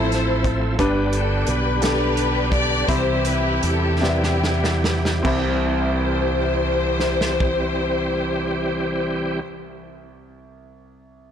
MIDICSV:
0, 0, Header, 1, 6, 480
1, 0, Start_track
1, 0, Key_signature, 0, "major"
1, 0, Tempo, 684932
1, 552, Time_signature, 6, 3, 24, 8
1, 1518, Tempo, 731707
1, 2478, Tempo, 785340
1, 2958, Tempo, 858369
1, 6818, End_track
2, 0, Start_track
2, 0, Title_t, "String section"
2, 0, Program_c, 0, 48
2, 0, Note_on_c, 0, 64, 67
2, 0, Note_on_c, 0, 69, 67
2, 0, Note_on_c, 0, 72, 89
2, 375, Note_off_c, 0, 72, 0
2, 531, Note_off_c, 0, 64, 0
2, 532, Note_off_c, 0, 69, 0
2, 802, Note_on_c, 0, 69, 92
2, 1020, Note_off_c, 0, 69, 0
2, 1039, Note_on_c, 0, 71, 98
2, 1277, Note_off_c, 0, 71, 0
2, 1282, Note_on_c, 0, 67, 80
2, 1284, Note_on_c, 0, 62, 76
2, 1286, Note_on_c, 0, 71, 106
2, 1731, Note_off_c, 0, 71, 0
2, 1757, Note_on_c, 0, 74, 113
2, 1967, Note_off_c, 0, 62, 0
2, 1967, Note_off_c, 0, 67, 0
2, 1989, Note_on_c, 0, 72, 101
2, 1991, Note_off_c, 0, 74, 0
2, 1992, Note_on_c, 0, 64, 77
2, 1992, Note_on_c, 0, 67, 77
2, 2231, Note_off_c, 0, 72, 0
2, 2231, Note_on_c, 0, 71, 90
2, 2474, Note_on_c, 0, 69, 94
2, 2478, Note_off_c, 0, 71, 0
2, 2692, Note_off_c, 0, 64, 0
2, 2692, Note_off_c, 0, 67, 0
2, 2712, Note_on_c, 0, 67, 86
2, 2713, Note_off_c, 0, 69, 0
2, 2714, Note_on_c, 0, 64, 62
2, 2717, Note_on_c, 0, 59, 65
2, 3245, Note_off_c, 0, 67, 0
2, 3402, Note_off_c, 0, 64, 0
2, 3404, Note_off_c, 0, 59, 0
2, 3422, Note_on_c, 0, 72, 89
2, 5743, Note_off_c, 0, 72, 0
2, 6818, End_track
3, 0, Start_track
3, 0, Title_t, "Grand piano"
3, 0, Program_c, 1, 0
3, 0, Control_c, 1, 64, 127
3, 0, Note_on_c, 1, 53, 62
3, 0, Note_on_c, 1, 60, 70
3, 0, Note_on_c, 1, 64, 67
3, 0, Note_on_c, 1, 69, 62
3, 0, Note_on_c, 1, 76, 86
3, 0, Note_on_c, 1, 83, 79
3, 290, Note_off_c, 1, 60, 0
3, 293, Note_off_c, 1, 53, 0
3, 293, Note_off_c, 1, 64, 0
3, 293, Note_off_c, 1, 69, 0
3, 293, Note_off_c, 1, 83, 0
3, 551, Note_on_c, 1, 62, 100
3, 554, Note_on_c, 1, 67, 86
3, 556, Note_on_c, 1, 43, 80
3, 557, Note_on_c, 1, 71, 110
3, 563, Note_off_c, 1, 76, 0
3, 563, Control_c, 1, 64, 0
3, 695, Control_c, 1, 64, 127
3, 1008, Note_off_c, 1, 62, 0
3, 1010, Note_off_c, 1, 67, 0
3, 1011, Note_off_c, 1, 71, 0
3, 1247, Note_off_c, 1, 43, 0
3, 1269, Note_on_c, 1, 62, 69
3, 1274, Note_on_c, 1, 67, 64
3, 1280, Note_on_c, 1, 69, 82
3, 1728, Note_off_c, 1, 62, 0
3, 1730, Note_off_c, 1, 67, 0
3, 1733, Note_off_c, 1, 69, 0
3, 1988, Note_on_c, 1, 60, 81
3, 1988, Note_on_c, 1, 64, 72
3, 1990, Note_on_c, 1, 67, 77
3, 1991, Note_on_c, 1, 83, 74
3, 1992, Note_on_c, 1, 48, 69
3, 1992, Note_on_c, 1, 76, 92
3, 1998, Control_c, 1, 64, 0
3, 2092, Control_c, 1, 64, 127
3, 2455, Note_off_c, 1, 60, 0
3, 2455, Note_off_c, 1, 64, 0
3, 2456, Note_off_c, 1, 67, 0
3, 2457, Note_off_c, 1, 76, 0
3, 2457, Note_off_c, 1, 83, 0
3, 2692, Note_off_c, 1, 48, 0
3, 2713, Note_on_c, 1, 48, 73
3, 2713, Note_on_c, 1, 64, 61
3, 2717, Note_on_c, 1, 67, 61
3, 2720, Note_on_c, 1, 71, 62
3, 2720, Note_on_c, 1, 74, 61
3, 2760, Note_on_c, 1, 76, 74
3, 2763, Note_off_c, 1, 74, 0
3, 3166, Note_off_c, 1, 48, 0
3, 3166, Note_off_c, 1, 64, 0
3, 3168, Note_off_c, 1, 67, 0
3, 3169, Note_off_c, 1, 71, 0
3, 3187, Note_off_c, 1, 76, 0
3, 3412, Note_on_c, 1, 60, 81
3, 3419, Note_on_c, 1, 67, 75
3, 3426, Note_on_c, 1, 36, 83
3, 3430, Note_on_c, 1, 83, 73
3, 3433, Control_c, 1, 64, 0
3, 3437, Note_on_c, 1, 76, 86
3, 3535, Control_c, 1, 64, 127
3, 5733, Note_off_c, 1, 60, 0
3, 5741, Note_off_c, 1, 67, 0
3, 5747, Note_off_c, 1, 36, 0
3, 5751, Note_off_c, 1, 83, 0
3, 5758, Note_off_c, 1, 76, 0
3, 6818, End_track
4, 0, Start_track
4, 0, Title_t, "Tonewheel organ"
4, 0, Program_c, 2, 16
4, 0, Note_on_c, 2, 53, 78
4, 0, Note_on_c, 2, 57, 62
4, 0, Note_on_c, 2, 60, 62
4, 0, Note_on_c, 2, 64, 73
4, 524, Note_off_c, 2, 64, 0
4, 530, Note_off_c, 2, 60, 0
4, 541, Note_off_c, 2, 53, 0
4, 541, Note_off_c, 2, 57, 0
4, 557, Note_on_c, 2, 50, 69
4, 558, Note_on_c, 2, 55, 69
4, 558, Note_on_c, 2, 67, 80
4, 559, Note_on_c, 2, 59, 70
4, 1977, Note_off_c, 2, 50, 0
4, 1977, Note_off_c, 2, 55, 0
4, 1977, Note_off_c, 2, 67, 0
4, 1978, Note_off_c, 2, 59, 0
4, 1989, Note_on_c, 2, 48, 62
4, 1991, Note_on_c, 2, 52, 69
4, 1991, Note_on_c, 2, 67, 77
4, 1992, Note_on_c, 2, 55, 62
4, 3412, Note_off_c, 2, 48, 0
4, 3413, Note_off_c, 2, 52, 0
4, 3413, Note_off_c, 2, 55, 0
4, 3413, Note_off_c, 2, 67, 0
4, 3423, Note_on_c, 2, 55, 63
4, 3423, Note_on_c, 2, 60, 65
4, 3423, Note_on_c, 2, 67, 77
4, 3424, Note_on_c, 2, 52, 71
4, 5744, Note_off_c, 2, 60, 0
4, 5744, Note_off_c, 2, 67, 0
4, 5745, Note_off_c, 2, 52, 0
4, 5745, Note_off_c, 2, 55, 0
4, 6818, End_track
5, 0, Start_track
5, 0, Title_t, "Fingered electric bass"
5, 0, Program_c, 3, 33
5, 0, Note_on_c, 3, 33, 87
5, 527, Note_off_c, 3, 33, 0
5, 554, Note_on_c, 3, 31, 109
5, 1004, Note_off_c, 3, 31, 0
5, 1034, Note_on_c, 3, 35, 99
5, 1964, Note_off_c, 3, 35, 0
5, 1990, Note_on_c, 3, 36, 106
5, 2453, Note_off_c, 3, 36, 0
5, 2481, Note_on_c, 3, 40, 86
5, 3404, Note_off_c, 3, 40, 0
5, 3424, Note_on_c, 3, 36, 98
5, 5746, Note_off_c, 3, 36, 0
5, 6818, End_track
6, 0, Start_track
6, 0, Title_t, "Drums"
6, 82, Note_on_c, 9, 42, 51
6, 92, Note_on_c, 9, 38, 36
6, 152, Note_off_c, 9, 42, 0
6, 162, Note_off_c, 9, 38, 0
6, 311, Note_on_c, 9, 36, 95
6, 314, Note_on_c, 9, 42, 46
6, 381, Note_off_c, 9, 36, 0
6, 384, Note_off_c, 9, 42, 0
6, 553, Note_on_c, 9, 42, 84
6, 554, Note_on_c, 9, 36, 105
6, 624, Note_off_c, 9, 36, 0
6, 624, Note_off_c, 9, 42, 0
6, 788, Note_on_c, 9, 42, 68
6, 858, Note_off_c, 9, 42, 0
6, 1026, Note_on_c, 9, 42, 64
6, 1096, Note_off_c, 9, 42, 0
6, 1274, Note_on_c, 9, 42, 93
6, 1289, Note_on_c, 9, 38, 108
6, 1344, Note_off_c, 9, 42, 0
6, 1359, Note_off_c, 9, 38, 0
6, 1520, Note_on_c, 9, 42, 53
6, 1585, Note_off_c, 9, 42, 0
6, 1749, Note_on_c, 9, 36, 98
6, 1753, Note_on_c, 9, 42, 47
6, 1814, Note_off_c, 9, 36, 0
6, 1819, Note_off_c, 9, 42, 0
6, 1990, Note_on_c, 9, 36, 106
6, 1990, Note_on_c, 9, 42, 84
6, 2056, Note_off_c, 9, 36, 0
6, 2056, Note_off_c, 9, 42, 0
6, 2226, Note_on_c, 9, 42, 69
6, 2292, Note_off_c, 9, 42, 0
6, 2475, Note_on_c, 9, 42, 60
6, 2537, Note_off_c, 9, 42, 0
6, 2725, Note_on_c, 9, 38, 61
6, 2786, Note_off_c, 9, 38, 0
6, 2848, Note_on_c, 9, 38, 64
6, 2910, Note_off_c, 9, 38, 0
6, 2970, Note_on_c, 9, 38, 80
6, 3026, Note_off_c, 9, 38, 0
6, 3084, Note_on_c, 9, 38, 85
6, 3140, Note_off_c, 9, 38, 0
6, 3197, Note_on_c, 9, 38, 110
6, 3253, Note_off_c, 9, 38, 0
6, 3315, Note_on_c, 9, 38, 93
6, 3371, Note_off_c, 9, 38, 0
6, 3424, Note_on_c, 9, 36, 101
6, 3424, Note_on_c, 9, 49, 90
6, 3480, Note_off_c, 9, 36, 0
6, 3480, Note_off_c, 9, 49, 0
6, 4402, Note_on_c, 9, 38, 59
6, 4458, Note_off_c, 9, 38, 0
6, 4521, Note_on_c, 9, 38, 76
6, 4577, Note_off_c, 9, 38, 0
6, 4630, Note_on_c, 9, 36, 92
6, 4686, Note_off_c, 9, 36, 0
6, 6818, End_track
0, 0, End_of_file